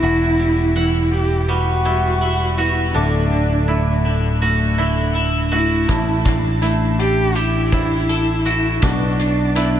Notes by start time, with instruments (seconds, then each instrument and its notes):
Already playing: cello E4, koto E4
0.03 picked electric bass E1, clean electric guitar E2, koto F#4, pedal steel guitar E5 F#5 B5
0.39 clean electric guitar G3
0.76 clean electric guitar E3, koto F#5
1.12 clean electric guitar G3, cello G4
1.48 koto G3, clean electric guitar B3, cello F#4
1.85 clean electric guitar G3, koto E4
2.21 clean electric guitar E4
2.57 clean electric guitar B3, cello E4, koto F#4
2.94 picked electric bass D1, clean electric guitar D2, koto D4, cello D4, pedal steel guitar A4 E5 D6
3.32 clean electric guitar D3
3.68 clean electric guitar A2, koto E4
4.05 clean electric guitar D3
4.42 clean electric guitar A3, koto F#4
4.78 clean electric guitar D3, koto E4
5.15 clean electric guitar E4
5.52 clean electric guitar A3, cello E4, koto F#4
5.88 picked electric bass A1, clean electric guitar A2, koto E4, pedal steel guitar A5, kick, closed hi-hat
6.25 clean electric guitar D4, kick, closed hi-hat
6.62 clean electric guitar A3, koto E4, closed hi-hat
6.99 clean electric guitar D4, cello G4, closed hi-hat
7.35 clean electric guitar E4, cello E4, koto G4, closed hi-hat
7.72 clean electric guitar D4, koto E4, kick, closed hi-hat
8.09 clean electric guitar A4, closed hi-hat
8.46 clean electric guitar E4, koto F#4, closed hi-hat
8.82 picked electric bass B1, clean electric guitar B2, koto D4, cello D4, pedal steel guitar B4 D5 F#5 C#6, kick, closed hi-hat
9.19 clean electric guitar D4, closed hi-hat
9.56 clean electric guitar B3, koto E4, closed hi-hat